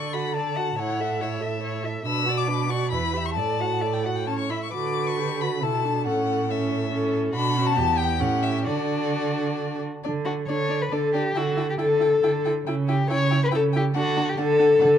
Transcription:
Already playing: cello D3, viola A4, violin D5 C#6
0.13 viola F#4, violin F#5 B5
0.35 viola A4, violin D5 A5
0.57 viola F#4, violin F#5
0.78 cello A2, viola E4, violin C#5 F#5
1.00 viola A4, violin E5
1.20 viola E4, violin C#5 E5
1.41 viola A4, violin E5
1.62 viola E4, violin C#5
1.84 viola A4, violin E5
2.05 cello B2, viola D4, violin B4 E6
2.26 viola F#4, violin D5
2.37 violin D6
2.47 viola D4, violin B4
2.69 viola F#4, violin D5 C#6
2.91 cello E2, viola E4, violin B4 B5
3.13 viola G4, violin E5
3.25 violin C#6
3.35 cello A2, viola A4, violin D5 A5
3.60 viola F#4, violin F#5
3.82 viola A4, violin D5
3.93 violin G5
4.04 viola F#4, violin F#5
4.16 violin G5
4.27 viola C#4, violin C#5 A5
4.39 violin C#6
4.50 viola E4, violin E5 B5
4.63 violin C#6
4.73 cello D3, viola F#4, violin B4 D6
5.06 violin C#6
5.19 viola G4
5.41 viola F#4, violin B5
5.62 cello B2, viola E4, violin A4 A5
5.85 viola D4
6.06 cello A2, viola C#4, violin A4 F#5
6.26 violin A4
6.50 viola C#4, violin E5
6.92 viola C#4, violin A4
7.33 cello B2, viola D4, violin F#4 B5
7.56 viola C#4
7.66 violin A5
7.77 cello E2, viola B3, violin G4
7.98 violin G5
8.17 cello A2, viola C#4, violin G4 F#5
8.43 violin E5
8.64 cello D3, viola D4, violin F#4 D5
10.04 cello D3, viola D4, violin D5
10.25 viola D4, violin F#4 D5
10.48 cello D3, viola D4, violin C#5 D5
10.69 viola D4, violin D5
10.82 violin B4
10.91 cello D3, viola D4, violin A4 D5
11.14 viola D4, violin G4 D5
11.35 cello D3, viola E4, violin F#4 G5
11.57 viola E4, violin G5
11.70 violin G4
11.78 cello D3, viola E4, violin A4 G5
12.00 viola E4, violin G5
12.23 cello D3, viola E4, violin G5
12.45 viola E4, violin G5
12.67 cello C#3, viola E4, violin G5
12.88 viola E4, violin G4 G5
13.10 cello C#3, viola E4, violin C#5 G5
13.31 viola E4, violin G5
13.44 violin B4
13.51 cello C#3, viola E4, violin G5
13.55 violin A4
13.73 viola E4, violin G4 G5
13.94 cello D3, viola D4, violin F#4 F#5
14.16 viola D4, violin F#5
14.29 violin G4
14.37 cello D3, viola D4, violin A4 F#5
14.59 viola D4, violin F#5
14.80 cello D3, viola D4, violin F#5

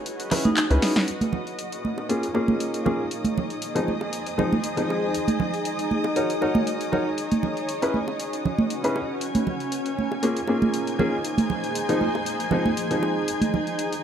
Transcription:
Already playing: ambient pad F#4 B4 D#5
0.06 closed hi-hat
0.20 closed hi-hat
0.31 felt piano C#4 E4 G#4 B4, clap, open hi-hat, low conga
0.45 vibraphone D#4, closed hi-hat, high conga
0.57 clap, closed hi-hat
0.70 analog synth bass C#2, felt piano C#4 E4 G#4 B4, closed hi-hat
0.82 vibraphone D#4, snare, open hi-hat
0.96 snare
1.08 ambient pad A#3, violin section D#5 D#6, closed hi-hat
1.21 ambient pad D#4, closed hi-hat, high conga
1.33 ambient pad C#5, low conga
1.47 ambient pad G#4, closed hi-hat
1.59 closed hi-hat
1.72 closed hi-hat
1.85 high conga
1.98 high bongo
2.09 felt piano A#3 C#4 F4 G#4, closed hi-hat
2.23 closed hi-hat
2.34 felt piano A#3 C#4 F4 G#4, high bongo
2.48 high conga
2.60 closed hi-hat
2.74 closed hi-hat
2.85 felt piano A#3 C#4 F4 G#4, low conga
3.11 ambient pad F3, closed hi-hat
3.24 closed hi-hat, high conga
3.38 low conga
3.50 closed hi-hat
3.58 ambient pad C5, closed hi-hat
3.75 felt piano F3 G#3 C4 D#4, closed hi-hat
3.88 high conga
4.01 high bongo
4.13 closed hi-hat
4.26 closed hi-hat
4.38 felt piano F3 G#3 C4 D#4, low conga
4.53 high conga
4.64 closed hi-hat
4.77 felt piano F3 G#3 C4 D#4, closed hi-hat
4.90 high bongo
5.14 closed hi-hat
5.28 closed hi-hat, high conga
5.40 low conga
5.54 closed hi-hat
5.59 ambient pad C#5
5.65 closed hi-hat
5.79 closed hi-hat
5.91 high conga
6.04 high bongo
6.16 felt piano D#4 F#4 A#4 C#5, closed hi-hat
6.30 closed hi-hat
6.41 felt piano D#4 F#4 A#4 C#5, high bongo
6.55 high conga
6.67 closed hi-hat
6.81 closed hi-hat
6.92 felt piano D#4 F#4 A#4 C#5, low conga
7.18 ambient pad C#4, closed hi-hat
7.32 closed hi-hat, high conga
7.43 low conga
7.57 ambient pad F#4, closed hi-hat
7.69 closed hi-hat
7.82 felt piano C#4 E4 G#4 B4, closed hi-hat
7.94 high conga
8.08 ambient pad B4, high bongo
8.20 closed hi-hat
8.33 closed hi-hat
8.45 low conga
8.58 high conga
8.70 closed hi-hat
8.84 felt piano C#4 E4 G#4 B4, closed hi-hat
8.96 high bongo
9.21 ambient pad A#3, violin section G#5 G#6, closed hi-hat
9.33 ambient pad D#4, closed hi-hat, high conga
9.47 low conga
9.60 closed hi-hat
9.72 closed hi-hat
9.86 closed hi-hat
9.99 high conga
10.10 ambient pad G#4 C5, high bongo
10.22 felt piano A#3 C#4 F4 G#4, closed hi-hat
10.37 closed hi-hat
10.47 felt piano A#3 C#4 F4 G#4, high bongo
10.62 high conga
10.74 closed hi-hat
10.87 closed hi-hat
10.99 felt piano A#3 C#4 F4 G#4, low conga
11.24 ambient pad F3, closed hi-hat
11.38 closed hi-hat, high conga
11.50 low conga
11.64 closed hi-hat
11.75 closed hi-hat
11.89 felt piano F3 G#3 C4 D#4, closed hi-hat
12.01 high conga
12.15 high bongo
12.26 closed hi-hat
12.40 closed hi-hat
12.51 felt piano F3 G#3 C4 D#4, low conga
12.66 high conga
12.77 closed hi-hat
12.91 felt piano F3 G#3 C4 D#4, closed hi-hat
13.03 high bongo
13.28 closed hi-hat
13.41 closed hi-hat, high conga
13.54 low conga
13.67 closed hi-hat
13.79 closed hi-hat
13.93 closed hi-hat

